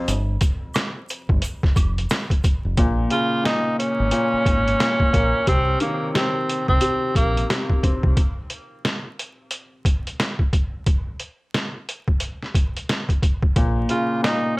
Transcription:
0.08 0.36 G1 loud
0.08 closed hi-hat loud
0.08 shaker medium
0.41 kick loud
0.41 closed hi-hat medium
0.41 shaker soft
0.74 snare loud
0.74 closed hi-hat medium
0.74 high woodblock medium
0.74 shaker medium
1.09 closed hi-hat medium
1.09 shaker soft
1.29 1.40 G1 loud
1.29 kick loud
1.42 closed hi-hat medium
1.42 shaker medium
1.63 kick loud
1.63 snare soft
1.76 2.04 F1 medium
1.76 kick loud
1.76 closed hi-hat medium
1.76 high woodblock medium
1.76 shaker medium
1.98 closed hi-hat soft
2.10 snare loud
2.10 closed hi-hat loud
2.10 shaker medium
2.30 kick medium
2.30 closed hi-hat medium
2.44 kick loud
2.44 closed hi-hat medium
2.44 shaker medium
2.65 2.76 F1 medium
2.77 3.06 A#1 loud
2.77 3.43 A#2 loud
2.77 kick loud
2.77 closed hi-hat loud
3.10 4.80 C#3 medium
3.10 3.42 F4 medium
3.10 closed hi-hat medium
3.44 4.10 A#2 medium
3.44 3.76 D#4 medium
3.44 snare loud
3.44 closed hi-hat medium
3.79 5.43 C#4 medium
3.79 closed hi-hat medium
4.00 4.10 G#1 medium
4.11 4.79 A#2 medium
4.11 closed hi-hat loud
4.33 muted fingered electric bass stroke soft
4.46 4.74 G#1 loud
4.46 kick loud
4.46 closed hi-hat medium
4.68 closed hi-hat soft
4.80 5.47 A#2 medium
4.80 snare loud
4.80 closed hi-hat loud
5.00 kick medium
5.13 5.31 A#1 medium
5.13 5.47 A#3 medium
5.13 kick loud
5.13 closed hi-hat medium
5.47 5.75 C2 loud
5.47 6.13 C3 medium
5.47 5.78 C4 loud
5.47 kick loud
5.47 closed hi-hat loud
5.80 7.49 D#3 medium
5.80 6.11 A#3 medium
5.80 closed hi-hat medium
6.14 6.80 C3 medium
6.14 6.67 C4 medium
6.14 snare loud
6.14 closed hi-hat medium
6.50 closed hi-hat medium
6.68 6.80 C2 medium
6.68 7.13 C4 medium
6.68 kick medium
6.81 7.48 C3 medium
6.81 closed hi-hat loud
7.15 7.44 A#1 medium
7.15 7.46 A#3 medium
7.15 kick loud
7.15 closed hi-hat medium
7.37 closed hi-hat medium
7.49 8.17 C3 medium
7.49 snare loud
7.49 closed hi-hat loud
7.70 kick medium
7.83 8.17 C4 medium
7.83 kick loud
7.83 closed hi-hat medium
8.03 8.15 C2 medium
8.03 kick loud
8.17 kick loud
8.17 closed hi-hat loud
8.50 closed hi-hat medium
8.85 snare loud
8.85 closed hi-hat medium
9.19 closed hi-hat medium
9.51 closed hi-hat medium
9.85 kick loud
9.85 closed hi-hat medium
10.07 closed hi-hat medium
10.20 snare loud
10.20 closed hi-hat loud
10.39 kick medium
10.53 kick loud
10.53 closed hi-hat medium
10.86 kick loud
10.86 closed hi-hat loud
11.20 closed hi-hat medium
11.54 snare loud
11.54 closed hi-hat medium
11.89 closed hi-hat medium
12.08 kick medium
12.20 closed hi-hat loud
12.42 snare soft
12.55 kick loud
12.55 closed hi-hat medium
12.77 closed hi-hat medium
12.89 snare loud
12.89 closed hi-hat loud
13.09 kick medium
13.09 closed hi-hat soft
13.23 kick loud
13.23 closed hi-hat medium
13.43 kick medium
13.56 13.84 A#1 loud
13.56 14.21 A#2 loud
13.56 kick loud
13.56 closed hi-hat loud
13.89 14.60 C#3 medium
13.89 14.21 F4 medium
13.89 closed hi-hat medium
14.23 14.60 A#2 medium
14.23 14.54 D#4 medium
14.23 snare loud
14.23 closed hi-hat medium

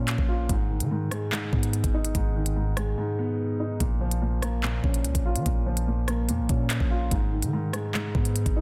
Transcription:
0.00 0.17 A#2 loud
0.00 0.51 A#2 loud
0.00 0.51 F3 medium
0.00 0.50 A#3 medium
0.00 0.51 C#4 medium
0.00 0.28 F4 medium
0.08 clap loud
0.08 closed hi-hat medium
0.18 0.48 A#1 loud
0.18 kick loud
0.28 0.49 F4 medium
0.49 0.82 G#1 loud
0.49 0.90 G#2 medium
0.49 kick loud
0.49 closed hi-hat medium
0.70 1.73 D#3 medium
0.80 1.10 D#3 loud
0.80 closed hi-hat medium
0.91 1.31 G#2 medium
1.11 2.15 G#3 medium
1.11 cross-stick loud
1.11 closed hi-hat medium
1.32 2.14 G#2 medium
1.32 clap loud
1.53 1.83 G#2 loud
1.53 2.56 B3 medium
1.53 kick loud
1.63 closed hi-hat medium
1.73 closed hi-hat medium
1.84 2.14 G#1 loud
1.84 kick loud
1.84 closed hi-hat medium
1.94 2.98 D#4 medium
2.05 closed hi-hat medium
2.15 2.94 G#1 loud
2.15 2.55 G#2 loud
2.15 kick loud
2.15 closed hi-hat medium
2.36 3.39 D#3 medium
2.46 closed hi-hat medium
2.56 2.96 G#2 medium
2.77 3.80 G#3 medium
2.77 cross-stick loud
2.77 closed hi-hat medium
2.98 3.81 G#2 medium
3.19 3.81 B3 medium
3.60 3.80 D#4 medium
3.80 4.80 A#1 loud
3.80 4.20 A#2 loud
3.80 kick loud
3.80 closed hi-hat medium
4.01 5.04 F3 medium
4.11 closed hi-hat medium
4.22 4.62 A#2 medium
4.42 5.46 A#3 medium
4.42 cross-stick loud
4.42 closed hi-hat medium
4.63 5.44 A#2 loud
4.63 clap loud
4.84 5.06 A#1 loud
4.84 5.87 C#4 medium
4.84 kick loud
4.94 closed hi-hat medium
5.04 5.14 C#2 loud
5.04 closed hi-hat medium
5.15 5.37 A#1 loud
5.15 kick loud
5.15 closed hi-hat medium
5.25 6.29 F4 medium
5.35 5.45 F3 loud
5.35 closed hi-hat medium
5.46 6.30 A#1 loud
5.46 5.86 A#2 medium
5.46 kick loud
5.46 closed hi-hat medium
5.66 6.70 F3 medium
5.77 closed hi-hat medium
5.88 6.28 A#2 medium
6.08 7.12 A#3 medium
6.08 cross-stick loud
6.08 closed hi-hat medium
6.29 6.41 F2 loud
6.29 7.12 A#2 medium
6.29 closed hi-hat medium
6.39 6.49 A#1 loud
6.49 6.79 A#2 loud
6.49 7.12 C#4 medium
6.49 kick loud
6.49 closed hi-hat medium
6.70 clap loud
6.70 closed hi-hat medium
6.80 7.10 A#1 loud
6.80 kick loud
6.90 7.11 F4 medium
7.11 7.44 G#1 loud
7.11 7.52 G#2 medium
7.11 kick loud
7.11 closed hi-hat medium
7.32 8.36 D#3 medium
7.42 7.72 D#3 loud
7.42 closed hi-hat medium
7.53 7.93 G#2 medium
7.73 8.61 G#3 medium
7.73 cross-stick loud
7.73 closed hi-hat medium
7.94 8.61 G#2 medium
7.94 clap loud
8.15 8.45 G#2 loud
8.15 8.61 B3 medium
8.15 kick loud
8.25 closed hi-hat medium
8.36 closed hi-hat medium
8.46 8.61 G#1 loud
8.46 kick loud
8.46 closed hi-hat medium
8.56 8.61 D#4 medium

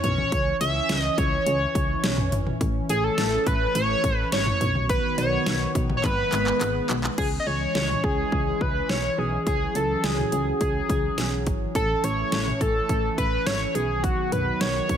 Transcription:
0.00 0.24 B1 loud
0.00 4.57 E3 medium
0.00 4.57 C#4 medium
0.00 0.57 C#5 loud
0.00 closed hi-hat medium
0.00 mid tom medium
0.18 mid tom medium
0.32 0.52 C#2 loud
0.32 kick loud
0.32 closed hi-hat medium
0.61 0.81 C#2 loud
0.61 1.00 E5 loud
0.61 closed hi-hat medium
0.89 1.09 C#2 loud
0.89 snare loud
0.89 closed hi-hat medium
1.00 1.19 D#5 loud
1.18 1.38 C#2 loud
1.18 2.32 C#5 loud
1.18 kick loud
1.18 closed hi-hat medium
1.46 1.67 C#2 loud
1.46 closed hi-hat medium
1.75 1.95 C#2 loud
1.75 kick loud
1.75 closed hi-hat medium
2.04 2.34 B1 loud
2.04 snare loud
2.04 closed hi-hat medium
2.18 mid tom loud
2.32 2.52 G#1 loud
2.32 closed hi-hat medium
2.32 mid tom medium
2.47 mid tom medium
2.61 2.81 A1 loud
2.61 4.59 A3 medium
2.61 kick loud
2.61 closed hi-hat medium
2.89 3.09 A1 loud
2.89 3.05 G#4 medium
2.89 closed hi-hat medium
3.04 3.48 A4 loud
3.18 3.38 A1 loud
3.18 snare loud
3.18 closed hi-hat medium
3.47 3.67 A1 loud
3.47 3.75 B4 loud
3.47 kick loud
3.47 closed hi-hat medium
3.75 3.95 A1 loud
3.75 4.16 C#5 loud
3.75 closed hi-hat medium
4.04 4.24 A1 loud
4.04 kick loud
4.04 closed hi-hat medium
4.16 4.28 B4 loud
4.32 4.52 G#1 medium
4.32 4.86 C#5 loud
4.32 snare loud
4.32 closed hi-hat medium
4.46 mid tom loud
4.61 5.01 B1 loud
4.61 7.15 D#3 medium
4.61 6.02 F#3 medium
4.61 6.02 B3 medium
4.61 closed hi-hat medium
4.61 mid tom medium
4.75 mid tom medium
4.89 5.16 B4 loud
4.89 kick loud
4.89 closed hi-hat medium
5.18 5.38 B1 loud
5.18 5.71 C#5 loud
5.18 closed hi-hat medium
5.18 cowbell medium
5.46 5.67 B1 loud
5.46 snare loud
5.46 closed hi-hat medium
5.75 5.95 B1 loud
5.75 kick loud
5.75 closed hi-hat medium
5.90 mid tom loud
5.97 6.05 C#5 medium
6.04 6.24 G#1 loud
6.04 7.17 G#3 medium
6.04 7.17 B3 medium
6.04 6.89 B4 loud
6.04 kick medium
6.04 clap medium
6.04 closed hi-hat medium
6.32 6.52 G#1 medium
6.32 clap medium
6.32 closed hi-hat medium
6.47 clap medium
6.61 6.81 G#1 medium
6.61 clap medium
6.61 closed hi-hat medium
6.89 7.09 B1 loud
6.89 clap loud
6.89 closed hi-hat medium
7.04 clap loud
7.18 7.38 C#2 loud
7.18 11.71 E3 medium
7.18 9.44 G#3 medium
7.18 13.71 C#4 medium
7.18 7.28 G#4 loud
7.18 kick loud
7.18 crash medium
7.40 7.48 D#5 medium
7.47 7.67 C#2 medium
7.47 8.05 C#5 loud
7.75 7.95 C#2 loud
7.75 snare loud
7.89 mid tom medium
8.04 8.24 C#2 loud
8.04 8.63 G#4 loud
8.04 kick loud
8.32 8.52 C#2 loud
8.32 kick medium
8.61 8.81 C#2 loud
8.61 8.91 B4 medium
8.61 kick loud
8.89 9.09 B1 medium
8.89 9.20 C#5 loud
8.89 snare loud
9.18 9.38 B1 loud
9.18 9.47 G#4 medium
9.47 9.67 C#2 loud
9.47 11.73 F#3 medium
9.47 9.77 G#4 medium
9.47 kick loud
9.47 closed hi-hat medium
9.75 9.95 C#2 loud
9.75 10.06 A4 medium
9.75 closed hi-hat medium
10.04 10.24 C#2 loud
10.04 10.61 G#4 medium
10.04 snare loud
10.04 closed hi-hat medium
10.18 mid tom medium
10.32 10.52 C#2 loud
10.32 closed hi-hat medium
10.61 10.81 C#2 loud
10.61 11.43 G#4 medium
10.61 kick medium
10.61 closed hi-hat medium
10.89 11.09 C#2 loud
10.89 kick loud
10.89 closed hi-hat medium
11.18 11.48 B1 loud
11.18 snare loud
11.18 closed hi-hat medium
11.47 11.67 G#1 loud
11.47 kick medium
11.47 closed hi-hat medium
11.75 11.95 A1 loud
11.75 13.73 E3 medium
11.75 13.73 A3 medium
11.75 12.05 A4 loud
11.75 kick loud
11.75 closed hi-hat medium
12.04 12.24 A1 loud
12.04 12.62 C#5 loud
12.04 closed hi-hat medium
12.32 12.52 A1 loud
12.32 snare loud
12.32 closed hi-hat medium
12.47 mid tom medium
12.61 12.81 A1 loud
12.61 13.17 A4 loud
12.61 kick loud
12.61 closed hi-hat medium
12.89 13.09 A1 loud
12.89 kick medium
12.89 closed hi-hat medium
13.18 13.38 A1 loud
13.18 13.48 B4 loud
13.18 kick loud
13.18 closed hi-hat medium
13.46 13.67 G#1 medium
13.46 13.76 C#5 loud
13.46 snare loud
13.46 closed hi-hat medium
13.75 14.15 B1 loud
13.75 14.97 D#3 medium
13.75 14.97 F#3 medium
13.75 14.97 B3 medium
13.75 14.05 G#4 medium
13.75 closed hi-hat medium
14.03 14.33 F#4 loud
14.03 kick loud
14.03 closed hi-hat medium
14.32 14.52 B1 loud
14.32 14.62 B4 loud
14.32 closed hi-hat medium
14.32 mid tom medium
14.61 14.81 B1 loud
14.61 14.97 C#5 loud
14.61 snare loud
14.61 closed hi-hat medium
14.89 14.97 B1 loud
14.89 kick medium
14.89 closed hi-hat medium

